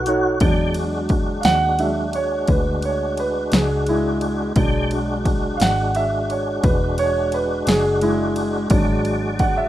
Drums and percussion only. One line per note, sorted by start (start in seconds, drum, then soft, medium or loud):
0.06 closed hi-hat medium
0.40 kick loud
0.40 ride medium
0.74 ride medium
1.09 kick medium
1.09 ride medium
1.43 snare loud
1.43 ride medium
1.79 ride medium
2.13 ride medium
2.48 kick medium
2.48 ride medium
2.82 ride medium
3.17 ride medium
3.52 snare loud
3.52 ride medium
3.87 ride medium
4.21 ride medium
4.56 kick loud
4.56 ride medium
4.91 ride medium
5.25 kick medium
5.25 ride medium
5.60 snare loud
5.60 ride medium
5.95 ride medium
6.30 ride medium
6.64 kick loud
6.64 ride medium
6.98 ride medium
7.32 ride medium
7.67 snare loud
7.67 ride medium
8.01 ride medium
8.36 ride medium
8.70 kick loud
8.70 ride medium
9.05 ride medium
9.39 kick medium
9.39 ride medium